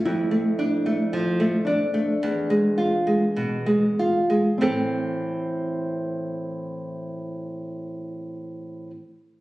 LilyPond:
<<
  \new Staff \with { instrumentName = "Nylon-string guitar" } { \time 4/4 \key a \minor \tempo 4 = 50 e'4. d'2 r8 | c'1 | }
  \new Staff \with { instrumentName = "Nylon-string guitar" } { \time 4/4 \key a \minor f,16 a16 d'16 a16 f16 a16 d'16 a16 e,16 gis16 f'16 gis16 b,16 gis16 f'16 gis16 | <a, e c' e' a' c''>1 | }
>>